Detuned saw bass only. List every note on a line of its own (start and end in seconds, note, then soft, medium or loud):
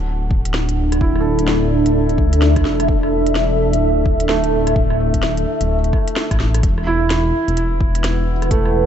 0.00 1.84 D1 loud
1.86 2.20 D1 loud
2.18 2.64 D2 medium
2.65 3.75 E1 medium
3.73 4.18 D1 loud
4.20 5.45 D1 medium
5.61 5.92 D1 loud
6.31 6.39 A1 medium
6.40 6.62 A1 medium
6.63 7.33 E1 loud
7.48 8.86 E1 loud